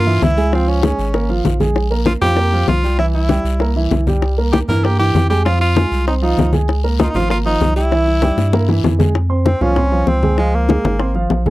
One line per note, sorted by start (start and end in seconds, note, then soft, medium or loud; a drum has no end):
0.00 0.19 G2 loud
0.00 0.25 F4 loud
0.06 0.32 E3 medium
0.06 0.32 E4 medium
0.06 0.32 E5 medium
0.06 high bongo soft
0.06 high conga soft
0.22 0.93 C#2 medium
0.22 0.53 E4 loud
0.22 high bongo soft
0.22 low bongo medium
0.22 high conga medium
0.22 short guiro medium
0.37 0.50 G#3 medium
0.37 0.50 G#4 medium
0.37 0.50 G#5 medium
0.37 high bongo soft
0.37 high conga soft
0.37 short guiro medium
0.53 0.78 F3 medium
0.53 0.70 C4 medium
0.53 0.78 F4 medium
0.53 0.78 F5 medium
0.53 high bongo medium
0.53 high conga soft
0.53 long guiro medium
0.68 1.30 C#4 medium
0.68 high bongo soft
0.68 high conga soft
0.83 1.09 G#3 medium
0.83 1.09 G#4 medium
0.83 1.09 G#5 medium
0.83 high bongo medium
0.83 high conga medium
0.83 short guiro medium
0.99 1.42 G#1 loud
0.99 high conga soft
0.99 short guiro medium
1.14 1.27 A#3 medium
1.14 1.27 A#4 medium
1.14 1.27 A#5 medium
1.14 high bongo medium
1.14 high conga soft
1.14 long guiro medium
1.29 1.55 F3 medium
1.29 1.55 F4 medium
1.29 1.55 F5 medium
1.29 high bongo soft
1.29 high conga soft
1.45 2.17 A#1 medium
1.45 high bongo soft
1.45 low bongo medium
1.45 high conga medium
1.45 short guiro medium
1.60 1.85 G#3 medium
1.60 1.86 G#4 medium
1.60 1.86 G#5 medium
1.60 high bongo soft
1.60 high conga medium
1.60 short guiro medium
1.76 high bongo medium
1.76 high conga soft
1.76 long guiro medium
1.90 2.16 A#3 medium
1.90 2.16 A#4 medium
1.90 2.17 A#5 medium
1.90 high bongo soft
1.90 high conga soft
2.06 2.13 F4 medium
2.06 high bongo medium
2.06 high conga loud
2.06 short guiro medium
2.21 2.65 F2 medium
2.21 2.34 F3 medium
2.21 2.34 F4 medium
2.21 2.65 G4 loud
2.21 2.34 F5 medium
2.21 high conga soft
2.21 low conga medium
2.21 short guiro medium
2.37 2.50 A#3 medium
2.37 2.50 A#4 medium
2.37 2.50 A#5 medium
2.37 high bongo medium
2.37 high conga soft
2.37 long guiro medium
2.52 2.78 F3 medium
2.52 2.78 F4 medium
2.52 2.78 F5 medium
2.52 high bongo soft
2.52 high conga soft
2.68 3.39 C2 medium
2.68 2.97 F4 medium
2.68 high bongo soft
2.68 low bongo medium
2.68 high conga medium
2.68 short guiro medium
2.83 2.96 G3 medium
2.83 2.96 G4 medium
2.83 2.97 G5 medium
2.83 high bongo soft
2.83 high conga soft
2.83 short guiro medium
2.99 3.24 E3 medium
2.99 3.06 E4 medium
2.99 3.24 E4 medium
2.99 3.25 E5 medium
2.99 high bongo medium
2.99 high conga soft
2.99 long guiro medium
3.14 3.72 E4 medium
3.14 high bongo soft
3.14 high conga soft
3.29 3.55 G3 medium
3.29 3.55 G4 medium
3.29 3.55 G5 medium
3.29 high bongo medium
3.29 high conga medium
3.29 short guiro medium
3.44 3.88 C2 medium
3.44 high conga soft
3.44 short guiro medium
3.60 3.73 A#3 medium
3.60 3.74 A#4 medium
3.60 3.74 A#5 medium
3.60 high bongo medium
3.60 high conga soft
3.60 long guiro medium
3.76 4.01 E3 medium
3.76 4.02 E4 medium
3.76 4.02 E5 medium
3.76 high bongo soft
3.76 high conga soft
3.91 4.63 C2 loud
3.91 high bongo soft
3.91 low bongo medium
3.91 high conga medium
3.91 short guiro medium
4.07 4.32 G3 medium
4.07 4.32 G4 medium
4.07 4.33 G5 medium
4.07 high bongo soft
4.07 high conga medium
4.07 short guiro medium
4.22 high bongo medium
4.22 high conga soft
4.22 long guiro medium
4.38 4.63 A#3 medium
4.38 4.63 A#4 medium
4.38 4.64 A#5 medium
4.38 high bongo soft
4.38 high conga soft
4.53 4.60 G4 medium
4.53 high bongo medium
4.53 high conga loud
4.53 short guiro medium
4.68 5.11 G2 loud
4.68 4.82 E3 medium
4.68 4.82 E4 medium
4.68 4.86 A#4 medium
4.68 4.82 E5 medium
4.68 high conga soft
4.68 low conga medium
4.68 short guiro medium
4.84 4.97 A#3 medium
4.84 4.99 G4 loud
4.84 4.97 A#4 medium
4.84 4.97 A#5 medium
4.84 high bongo medium
4.84 high conga soft
4.84 long guiro medium
4.99 5.24 E3 medium
4.99 5.24 E4 medium
4.99 5.28 G4 loud
4.99 5.25 E5 medium
4.99 high bongo soft
4.99 high conga soft
5.14 5.86 F2 loud
5.14 high bongo soft
5.14 low bongo medium
5.14 high conga medium
5.14 short guiro medium
5.30 5.43 G#3 medium
5.30 5.44 G4 medium
5.30 5.43 G#4 medium
5.30 5.43 G#5 medium
5.30 high bongo soft
5.30 high conga soft
5.30 short guiro medium
5.45 5.71 F3 medium
5.45 5.60 F4 medium
5.45 5.71 F4 medium
5.45 5.71 F5 medium
5.45 high bongo medium
5.45 long guiro medium
5.61 6.04 F4 loud
5.61 high bongo soft
5.61 high conga soft
5.76 6.02 G#3 medium
5.76 6.02 G#4 medium
5.76 6.02 G#5 medium
5.76 high bongo medium
5.76 high conga medium
5.76 short guiro medium
5.91 6.34 C2 medium
5.91 high conga soft
5.91 short guiro medium
6.07 6.20 C4 medium
6.07 6.14 D#4 medium
6.07 6.20 C5 medium
6.07 6.20 C6 medium
6.07 high bongo medium
6.07 high conga soft
6.07 long guiro medium
6.22 6.47 F3 medium
6.22 6.52 D#4 medium
6.22 6.48 F4 medium
6.22 6.48 F5 medium
6.22 high bongo soft
6.22 high conga soft
6.38 7.09 C#2 medium
6.38 high bongo soft
6.38 low bongo medium
6.38 high conga medium
6.38 short guiro medium
6.53 6.78 G#3 medium
6.53 6.79 G#4 medium
6.53 6.79 G#5 medium
6.53 high bongo soft
6.53 high conga medium
6.53 short guiro medium
6.68 high bongo medium
6.68 long guiro medium
6.84 7.09 A#3 medium
6.84 7.09 A#4 medium
6.84 7.09 A#5 medium
6.84 high bongo soft
6.84 high conga soft
6.99 7.05 D#4 medium
6.99 high bongo medium
6.99 high conga loud
6.99 short guiro medium
7.04 7.10 F4 medium
7.08 7.17 D#4 medium
7.14 7.57 G#1 medium
7.14 7.27 F3 medium
7.14 7.30 F4 loud
7.14 7.28 F4 medium
7.14 7.28 F5 medium
7.14 high conga soft
7.14 low conga medium
7.14 short guiro medium
7.29 7.42 A#3 medium
7.29 7.38 F4 medium
7.29 7.43 A#4 medium
7.29 7.42 A#5 medium
7.29 high bongo medium
7.29 high conga soft
7.29 long guiro medium
7.45 7.70 F3 medium
7.45 7.74 D#4 loud
7.45 7.71 F4 medium
7.45 7.71 F5 medium
7.45 high bongo soft
7.45 high conga soft
7.60 8.32 C2 medium
7.60 high bongo soft
7.60 low bongo medium
7.60 high conga medium
7.60 short guiro medium
7.76 7.89 G3 medium
7.76 8.80 E4 loud
7.76 7.89 G4 medium
7.76 7.89 G5 medium
7.76 high bongo soft
7.76 short guiro medium
7.91 8.17 E3 medium
7.91 8.17 E4 medium
7.91 8.17 E5 medium
7.91 high bongo medium
7.91 high conga soft
7.91 long guiro medium
8.07 high bongo soft
8.07 high conga soft
8.22 8.48 G3 medium
8.22 8.48 G4 medium
8.22 8.48 G5 medium
8.22 high bongo medium
8.22 high conga medium
8.22 short guiro medium
8.37 8.81 G2 medium
8.37 high bongo medium
8.37 high conga soft
8.37 short guiro medium
8.53 8.66 A#3 medium
8.53 8.66 A#4 medium
8.53 8.66 A#5 medium
8.53 low bongo medium
8.53 high conga soft
8.53 long guiro medium
8.68 8.94 E3 medium
8.68 8.94 E4 medium
8.68 8.94 E5 medium
8.68 low bongo medium
8.68 high conga soft
8.83 9.55 F2 medium
8.83 low bongo loud
8.83 high conga medium
8.83 short guiro medium
8.99 9.12 G#3 medium
8.99 9.12 G#4 medium
8.99 9.12 G#5 medium
8.99 low bongo medium
8.99 high conga medium
8.99 short guiro medium
9.15 high bongo medium
9.29 9.55 C4 medium
9.29 9.55 C5 medium
9.29 9.55 C6 medium
9.29 high conga soft
9.46 9.63 C4 loud
9.46 high bongo medium
9.46 high conga medium
9.61 10.04 C2 medium
9.61 9.74 F3 medium
9.61 10.10 C#4 loud
9.61 9.74 F4 medium
9.61 9.74 F5 medium
9.61 high bongo soft
9.61 high conga soft
9.61 low conga medium
9.76 9.89 C4 medium
9.76 9.90 C5 medium
9.76 9.90 C6 medium
9.76 high bongo medium
9.76 high conga soft
9.76 low conga medium
9.92 10.17 F3 medium
9.92 10.17 F4 medium
9.92 10.17 F5 medium
9.92 high bongo soft
9.92 high conga soft
10.07 10.78 C#2 medium
10.07 10.38 C4 medium
10.07 high bongo soft
10.07 low bongo medium
10.07 high conga soft
10.22 10.36 G#3 medium
10.22 10.36 G#4 medium
10.22 10.36 G#5 medium
10.22 high bongo soft
10.22 high conga medium
10.38 10.64 F3 medium
10.38 10.56 G#3 medium
10.38 10.64 F4 medium
10.38 10.64 F5 medium
10.38 high bongo medium
10.54 11.16 A#3 medium
10.54 high conga soft
10.69 10.94 G#3 medium
10.69 10.94 G#4 medium
10.69 10.94 G#5 medium
10.69 high bongo medium
10.69 high conga medium
10.84 11.27 G#1 medium
10.84 high bongo soft
10.84 high conga medium
10.99 11.12 C4 medium
10.99 11.12 C5 medium
10.99 11.13 C6 medium
10.99 high bongo medium
10.99 high conga soft
11.15 11.40 F3 medium
11.15 11.40 F4 medium
11.15 11.41 F5 medium
11.15 high bongo soft
11.15 high conga soft
11.30 11.50 A#1 medium
11.30 high bongo soft
11.30 low bongo medium
11.30 high conga soft
11.46 11.50 G#3 medium
11.46 11.50 G#4 medium
11.46 11.50 G#5 medium
11.46 high bongo soft
11.46 high conga medium